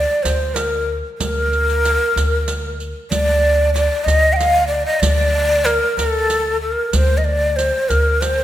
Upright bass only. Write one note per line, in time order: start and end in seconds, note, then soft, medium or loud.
0.24 1.00 D2 medium
1.20 1.95 D2 medium
2.16 2.91 D2 medium
3.11 3.86 D2 medium
4.06 4.82 D2 medium
5.02 5.77 D2 medium
5.97 6.73 D2 medium
6.93 7.69 D2 loud
7.90 8.44 D2 medium